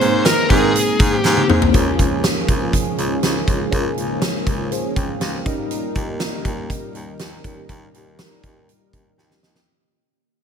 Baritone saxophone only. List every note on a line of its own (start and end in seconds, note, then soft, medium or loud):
0.01 0.27 G#2 loud
0.50 0.77 G#2 loud
1.00 1.18 G#2 loud
1.24 1.42 G#2 loud
1.49 1.67 G#2 medium
1.74 1.92 C#2 loud
1.99 2.26 C#2 medium
2.49 2.75 C#2 loud
2.98 3.16 C#2 loud
3.23 3.41 C#2 loud
3.48 3.65 C#2 medium
3.72 3.90 C#2 loud
3.98 4.24 C#2 medium
4.47 4.73 C#2 medium
4.96 5.14 C#2 medium
5.21 5.39 C#2 medium
5.96 6.22 D#2 medium
6.45 6.72 D#2 medium
6.95 7.13 D#2 medium
7.20 7.37 D#2 medium
7.44 7.62 D#2 medium
7.69 7.87 D#2 loud
7.94 8.21 D#2 medium
8.44 8.70 D#2 medium
8.93 9.11 D#2 medium
9.18 9.36 D#2 medium
9.43 9.61 D#2 medium